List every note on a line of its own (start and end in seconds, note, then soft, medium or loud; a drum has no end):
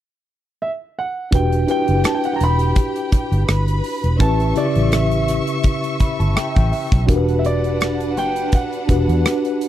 0.62 0.70 E5 medium
0.99 1.34 F#5 medium
1.31 1.64 E1 medium
1.31 1.62 D4 medium
1.31 1.62 F#4 medium
1.31 1.62 G4 medium
1.31 3.45 G4 medium
1.31 1.63 B4 medium
1.31 3.45 G5 medium
1.31 kick medium
1.31 closed hi-hat medium
1.35 1.69 G5 medium
1.52 closed hi-hat soft
1.67 2.86 D4 medium
1.67 2.86 E4 medium
1.67 2.87 G4 medium
1.67 2.87 B4 medium
1.67 2.06 G5 medium
1.67 closed hi-hat medium
1.88 2.03 F#1 medium
1.88 closed hi-hat soft
2.04 2.14 A5 medium
2.04 cross-stick medium
2.04 closed hi-hat medium
2.15 2.24 G5 medium
2.24 2.33 F#5 medium
2.24 closed hi-hat soft
2.33 2.41 G5 medium
2.33 2.41 A#5 medium
2.41 2.72 E1 medium
2.41 3.82 B5 loud
2.41 closed hi-hat medium
2.59 closed hi-hat soft
2.76 kick medium
2.76 closed hi-hat medium
2.96 closed hi-hat soft
3.12 muted fingered electric bass stroke soft
3.12 kick medium
3.12 closed hi-hat medium
3.32 3.46 G1 medium
3.32 closed hi-hat soft
3.48 3.80 G1 medium
3.48 4.19 B4 medium
3.48 4.19 B5 medium
3.48 cross-stick loud
3.48 closed hi-hat medium
3.68 closed hi-hat soft
3.84 open hi-hat medium
4.04 4.18 E1 medium
4.04 closed hi-hat soft
4.19 4.52 A1 loud
4.19 4.49 C#4 medium
4.19 4.50 E4 medium
4.19 4.50 G4 medium
4.19 4.51 B4 medium
4.19 7.05 E5 medium
4.19 4.57 A5 medium
4.19 7.04 C#6 medium
4.19 kick loud
4.19 closed hi-hat medium
4.40 closed hi-hat soft
4.55 5.74 C#3 medium
4.55 5.74 E4 medium
4.55 5.75 G4 medium
4.55 4.94 D5 medium
4.55 5.75 E5 medium
4.55 closed hi-hat medium
4.75 5.39 A1 medium
4.75 closed hi-hat soft
4.92 6.69 E5 medium
4.92 cross-stick medium
4.92 closed hi-hat medium
5.11 closed hi-hat soft
5.28 cross-stick soft
5.28 closed hi-hat medium
5.47 closed hi-hat soft
5.63 kick medium
5.63 closed hi-hat medium
5.84 closed hi-hat medium
6.00 6.18 B5 medium
6.00 muted fingered electric bass stroke soft
6.00 kick medium
6.00 closed hi-hat medium
6.20 6.34 G1 medium
6.20 6.35 A5 medium
6.20 closed hi-hat soft
6.36 6.54 G5 medium
6.36 muted fingered electric bass stroke soft
6.36 cross-stick loud
6.36 closed hi-hat medium
6.55 6.71 A1 medium
6.55 6.71 G5 medium
6.55 kick medium
6.55 closed hi-hat soft
6.72 7.06 E5 medium
6.72 open hi-hat medium
6.92 7.07 B1 medium
6.92 kick medium
6.92 closed hi-hat medium
7.07 8.26 D4 medium
7.07 9.68 D4 medium
7.07 8.26 F#4 medium
7.07 8.27 G4 medium
7.07 7.16 A#4 medium
7.07 9.68 B4 medium
7.07 9.68 F#5 medium
7.07 kick loud
7.07 closed hi-hat medium
7.16 8.31 B4 medium
7.29 closed hi-hat soft
7.39 7.45 E5 medium
7.45 8.20 D5 medium
7.45 closed hi-hat medium
7.64 closed hi-hat soft
7.81 cross-stick medium
7.81 closed hi-hat medium
8.00 closed hi-hat soft
8.17 8.65 F#1 medium
8.17 8.55 G5 medium
8.17 closed hi-hat medium
8.36 closed hi-hat soft
8.52 9.58 F#5 medium
8.52 kick medium
8.52 closed hi-hat medium
8.73 closed hi-hat soft
8.87 9.06 E1 medium
8.87 9.68 D4 medium
8.87 9.68 F#4 medium
8.87 9.68 G4 medium
8.87 9.68 B4 medium
8.87 kick medium
8.87 closed hi-hat medium
9.08 9.23 E2 medium
9.08 closed hi-hat soft
9.26 cross-stick loud
9.26 closed hi-hat medium
9.45 closed hi-hat soft
9.61 closed hi-hat medium